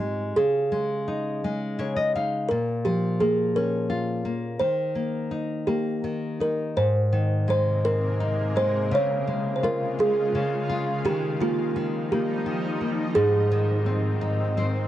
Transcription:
Already playing: G#2 C4 D#4 G4
0.00 G#3
0.36 C#3 G#4
0.72 G#3
1.08 D#4
1.44 G#3
1.79 C#3 C#5
1.96 D#5
2.15 D#4 F5
2.48 A#2 A#4
2.85 F3 G4
3.20 A#3 G#4
3.56 C#4 A#4
3.90 F4
4.25 A#3
4.59 D#3 C5
4.95 A#3
5.31 D#4
5.67 A#3 G4
6.04 D#3
6.40 D#4 A#4
6.76 G#2 C3 G#3 A#3 C5
7.12 D#3
7.48 G#3 C5
7.84 C4 A#4
8.20 D#4
8.56 G#3 C5
8.91 C#3 G#3 F4 C#5
9.28 G#3
9.56 C5
9.63 F4 A#4
9.99 G#3 G#4
10.35 C#3
10.69 F4
11.04 D#3 F3 G3 D#4 G4
11.40 A#3 F4
11.76 D#3
12.12 A#3 G4
12.46 D#3
12.81 A#3
13.15 G#2 D#3 C4 G#4
13.52 D#3
13.86 C4
14.21 D#4
14.57 C4 C5

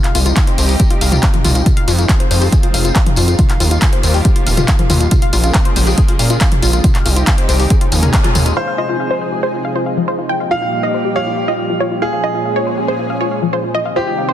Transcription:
Already playing: C3 D#3 G3 D#4 G4
0.04 F5, clap, closed hi-hat
0.15 C2 F4, open hi-hat, tambourine
0.26 F4, closed hi-hat, tambourine
0.36 F5, kick, clap, closed hi-hat, tambourine
0.47 C5, closed hi-hat
0.58 C2 C5, open hi-hat, tambourine
0.69 open hi-hat, tambourine
0.80 G4, kick, closed hi-hat, tambourine
0.90 F4, closed hi-hat
1.01 C2 F5, open hi-hat, tambourine
1.12 F4, closed hi-hat, mid tom, tambourine
1.23 F5, kick, clap, closed hi-hat
1.34 F3, closed hi-hat, mid tom
1.44 C2 F4, open hi-hat, mid tom, tambourine
1.55 F4, closed hi-hat, tambourine
1.66 F3 G#3 C4 F4, kick, closed hi-hat, mid tom, tambourine
1.77 F5, closed hi-hat
1.88 F2 F4, open hi-hat, tambourine
1.99 F4, closed hi-hat, tambourine
2.09 F5, kick, clap, closed hi-hat
2.20 C5, closed hi-hat
2.31 F2 C5, open hi-hat, tambourine
2.42 G4, open hi-hat, tambourine
2.52 G#4, kick, closed hi-hat, tambourine
2.63 F4, closed hi-hat
2.74 F1 F5, open hi-hat, tambourine
2.85 F4, closed hi-hat, tambourine
2.96 F5, kick, clap, closed hi-hat, tambourine
3.06 F3, closed hi-hat, mid tom
3.16 F2 F4, open hi-hat, tambourine
3.28 F4, closed hi-hat, tambourine
3.38 F3 G3 A#3 F4, kick, closed hi-hat, mid tom, tambourine
3.50 F5, clap, closed hi-hat
3.60 D#2 F4, open hi-hat, tambourine
3.71 F4, closed hi-hat, tambourine
3.82 F5, kick, clap, closed hi-hat, tambourine
3.93 C5, closed hi-hat
4.03 D#2 C5, open hi-hat, tambourine
4.14 G4, open hi-hat, tambourine
4.25 G4, kick, closed hi-hat, tambourine
4.36 F4, closed hi-hat
4.47 D#1 F5, open hi-hat, tambourine
4.57 F4, closed hi-hat, mid tom, tambourine
4.68 F5, kick, clap, closed hi-hat, tambourine
4.79 F3, closed hi-hat, mid tom
4.90 D#2 F4, open hi-hat, mid tom, tambourine
5.01 F4, closed hi-hat, tambourine
5.11 C#3 F3 G#3 A#3 F4, kick, closed hi-hat, mid tom, tambourine
5.22 F5, closed hi-hat
5.33 A#1 F4, open hi-hat, tambourine
5.44 F4, closed hi-hat, tambourine
5.54 F5, kick, clap, closed hi-hat, tambourine
5.65 C5, closed hi-hat
5.76 A#1 C5, open hi-hat, tambourine
5.87 G4, open hi-hat, tambourine
5.98 G#4, kick, closed hi-hat
6.08 F4, closed hi-hat
6.19 A#2 F5, open hi-hat, tambourine
6.30 F4, closed hi-hat, tambourine
6.40 F5, kick, clap, closed hi-hat, tambourine
6.52 F3, closed hi-hat, mid tom
6.62 A#1 F4, open hi-hat, tambourine
6.73 F4, closed hi-hat, tambourine
6.84 C3 D#3 G3 D#4 F4 G4, kick, closed hi-hat, mid tom, tambourine
6.95 F5, clap, closed hi-hat
7.06 C2 F4, open hi-hat, tambourine
7.16 F4, closed hi-hat, tambourine
7.27 F5, kick, clap, closed hi-hat
7.38 C5, closed hi-hat
7.49 C2 C5, open hi-hat, tambourine
7.59 G4, open hi-hat, tambourine
7.70 A#2 G#3 C#4 G#4, kick, closed hi-hat, tambourine
7.81 F4, closed hi-hat
7.92 D#2 F3, open hi-hat, tambourine
8.03 A#4, closed hi-hat, mid tom, tambourine
8.13 F5, kick, clap, closed hi-hat, tambourine
8.24 F4, closed hi-hat, mid tom
8.35 D#2 F4, open hi-hat, mid tom, tambourine
8.46 F4, closed hi-hat, tambourine
8.57 C3 F3 G#3 D#4 F4 G#4 C5 F5
8.67 F5
8.78 F4 D#5
8.89 F4
9.00 F5
9.11 C5
9.21 C5
9.32 G4
9.43 G#4 C5
9.54 F4
9.65 F5
9.75 F4 C5
9.86 F5
9.97 F3
10.08 F4 C5
10.19 F4
10.29 A#2 G3 F4 G4 G5
10.40 F5
10.51 F4 F5
10.62 F4
10.73 F5
10.83 C5 D#5
10.94 C5
11.05 G4
11.16 G4 C#5 F5
11.27 F4
11.37 F5
11.48 F4 D#5
11.59 F5
11.70 F3
11.80 F4 C#5
11.91 F4
12.02 A#2 G#3 C#4 F4 G#4 F5
12.13 F5
12.24 F4 D#5
12.34 F4
12.45 F5
12.56 C5 C#5
12.67 C5
12.78 G4
12.88 G#4 C5
12.99 F4
13.10 F5
13.21 F4 C#5
13.31 F5
13.42 F3
13.53 F4 C5
13.64 F4
13.75 C3 D#3 G3 D#4 F4 G4 D#5
13.86 F5
13.96 F4 G4 C5
14.07 F4
14.18 F5
14.29 C5

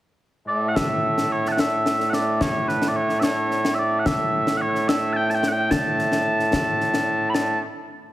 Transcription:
0.48 A2 A3 D5
0.68 F#5
0.76 E5, concert bass drum, snare
1.18 snare
1.32 C#5
1.46 A5, snare
1.52 F#5
1.59 E5, snare
1.86 snare
2.00 snare
2.10 F#5, snare
2.14 D5
2.41 C#5, concert bass drum, snare
2.68 B4, snare
2.82 snare
2.88 D5
2.96 C#5
3.09 snare
3.20 C#5 E5, snare
3.51 snare
3.65 snare
3.74 E5
3.79 D5
3.99 F#5
4.06 E5, concert bass drum, snare
4.47 snare
4.57 F#5
4.61 C#5
4.75 snare
4.88 E5, snare
5.13 G5 A5
5.30 A5, snare
5.35 G5
5.43 snare
5.48 F#5
5.52 G5
5.71 A5, concert bass drum, snare
5.99 snare
6.12 snare
6.40 snare
6.53 concert bass drum, snare
6.81 snare
6.94 snare
7.30 B5
7.34 A5, snare

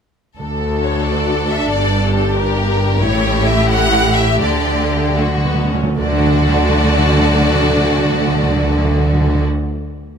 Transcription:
0.38 D2 D3 D4 F#4 A4
0.84 C#5
1.07 D5
1.50 E5
1.70 G1 G2 G4 D5
2.16 A4
2.37 G4 A#4
3.00 A1 A2 A3 E4 C#5
3.46 E5
3.69 F#5
4.16 E5
4.41 D2 D3 D4 D5
4.50 D3
4.65 D3
4.74 D3
4.83 D3
4.91 D3
5.01 D3
5.09 D3
5.18 D3 A3 F#4
5.27 D3
5.37 D3
5.44 D3 B3
5.54 D3
5.64 D3
5.71 D3 C#4
5.83 D3
5.98 D2 D3 A3 D4 F#4 D5
6.05 D3
6.12 D3
6.19 D3
6.27 D3
6.34 D3
6.41 D3
6.48 D3
6.55 D3
6.62 D3
6.69 D3
6.84 D3
6.92 D3
6.99 D3
7.06 D3
7.13 D3
7.20 D3
7.27 D3
7.34 D3
7.41 D3
7.48 D3
7.55 D3
7.63 D3
7.70 D3
7.77 D3
7.84 D3
7.91 D3
7.99 D3
8.05 D3
8.12 D3
8.21 D3
8.28 D3
8.35 D3
8.42 D3
8.49 D3
8.56 D3
8.63 D3
8.70 D3
8.77 D3
8.85 D3
8.91 D3
8.99 D3
9.06 D3
9.14 D3
9.21 D3
9.27 D3
9.35 D3

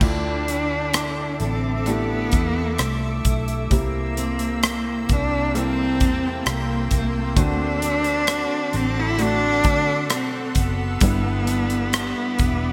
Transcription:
Already playing: G3 G4 A4
0.01 D2 D3 A3 D4 E4 F4 A4 E5 D6 E6, kick, crash
0.48 D4, closed hi-hat
0.94 E4, cross-stick, closed hi-hat
1.40 A1 C4 A4, closed hi-hat
1.86 A3 D4 E4 G4, closed hi-hat
1.90 B3
2.32 E2 E4, kick, closed hi-hat
2.78 C2 A3 A4, cross-stick, closed hi-hat
3.25 B1 E4, kick, closed hi-hat
3.48 closed hi-hat
3.70 C2 C3 A#3 C4 E4 G4 G5 C6, kick, closed hi-hat
3.75 A#3
4.17 C4, closed hi-hat
4.39 closed hi-hat
4.63 E4, cross-stick, closed hi-hat
5.09 C2 D4 A#4, kick, closed hi-hat
5.54 G3 A#3 C4 E4 A4, closed hi-hat
6.00 E2 E4, kick, closed hi-hat
6.46 C2 A#4, cross-stick, closed hi-hat
6.50 A#3
6.91 C2 E4, kick, closed hi-hat
7.36 D2 D3 A3 C4 D4 F#4 A4 F#5 D6, kick, closed hi-hat
7.41 D4
7.82 C4, closed hi-hat
8.04 closed hi-hat
8.27 F#4, cross-stick, closed hi-hat
8.73 A1 C4 A4, closed hi-hat
9.00 E4
9.18 A3 D4 F#4 E6, closed hi-hat
9.64 D2 F#4, kick, closed hi-hat
10.10 B1 A4, cross-stick, closed hi-hat
10.14 C4
10.55 F#1 F#4, kick, closed hi-hat
10.60 B3
11.01 G1 G2 G3 B3 D4 E4 G4 E5 B5 D6, kick, closed hi-hat
11.47 D4, closed hi-hat
11.70 closed hi-hat
11.93 E4, cross-stick, closed hi-hat
12.38 E1 B4, kick, closed hi-hat

